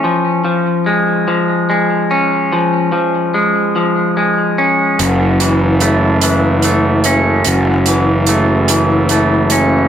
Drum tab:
HH |------|------|xxxxxx|xxxxxx|